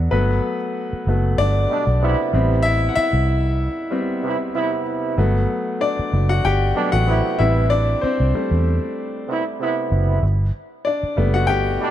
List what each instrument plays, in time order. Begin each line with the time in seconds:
0.11 fingered electric bass G1, grand piano F#3 A3 B3 B4
0.93 muted fingered electric bass stroke
1.07 fingered electric bass F#1, grand piano F#3 A3 B3
1.38 fingered electric bass G1, grand piano D4 D5
1.70 trombone section B2 G3 D4
1.87 fingered electric bass B1
2.02 trombone section C3 B3 E4
2.33 fingered electric bass A1, grand piano G3 B3 C4
2.63 grand piano E4 E5
2.89 grand piano F#5
2.96 grand piano E4 E5, muted fingered electric bass stroke
3.13 fingered electric bass C2
3.91 grand piano G3 B3 C4
4.23 trombone section C3 B3 E4
4.54 trombone section C3 B3 E4
5.18 fingered electric bass G1, grand piano F#3 A3 B3
5.81 grand piano D4 D5
5.99 muted fingered electric bass stroke
6.13 fingered electric bass F#1
6.29 grand piano F#4 F#5
6.45 fingered electric bass G1, grand piano G4 G5
6.75 trombone section B2 G3 D4, grand piano F#3 A3 B3
6.92 fingered electric bass A1, grand piano F#4 F#5
7.06 trombone section C3 B3 E4
7.38 fingered electric bass A1, grand piano G3 C4 E4 B4 E5
7.70 grand piano D4 D5
8.01 grand piano C4 C5, muted fingered electric bass stroke
8.20 fingered electric bass C2
8.34 grand piano G3 A3 C4, muted fingered electric bass stroke
8.51 fingered electric bass E2
9.28 trombone section C3 B3 E4
9.60 trombone section C3 B3 E4
9.92 fingered electric bass F#1
10.23 fingered electric bass G1
10.85 grand piano D4 D5
11.03 muted fingered electric bass stroke
11.17 fingered electric bass F#1, grand piano G3 A3 B3
11.34 grand piano F#4 F#5
11.47 fingered electric bass G1, grand piano G4 G5
11.81 trombone section B2 G3 D4